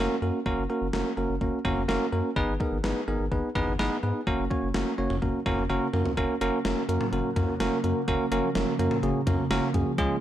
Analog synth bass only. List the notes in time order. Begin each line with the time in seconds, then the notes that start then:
0.22 F#2
0.46 F#1
0.58 F#1
0.82 F#1
0.93 F#1
1.17 F#1
1.29 F#1
1.41 F#1
1.65 F#1
1.77 F#1
1.89 F#1
2.13 F#2
2.36 G#1
2.48 G#1
2.72 G#1
2.84 G#1
3.08 G#1
3.20 G#1
3.32 G#1
3.55 G#1
3.67 G#1
3.79 G#1
4.03 G#2
4.27 F#1
4.39 F#1
4.63 F#1
4.75 F#1
4.98 F#1
5.10 F#1
5.22 F#1
5.46 F#1
5.58 F#1
5.70 F#1
5.94 F#2
6.17 F#1
6.41 F#1
6.65 F#1
6.89 F#2
7.13 F#1
7.36 F#2
7.60 F#1
7.84 F#2
8.08 F#1
8.32 F#1
8.55 F#1
8.79 F#2
9.03 F#1
9.27 F#2
9.51 F#1
9.74 F#2
9.98 C#2